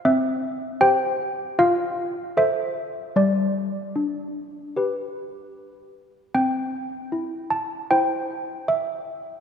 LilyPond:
\new Staff \with { instrumentName = "Handbells" } { \time 4/4 \key c \major \tempo 4 = 77 << { e''4 g''4 f''4 e''4 | d''2. r4 | g''4. a''8 g''4 e''4 | } \\ { c'4 <g' c''>4 f'4 <a' c''>4 | g4 d'4 <g' b'>2 | c'4 e'4 <e' c''>2 | } >> }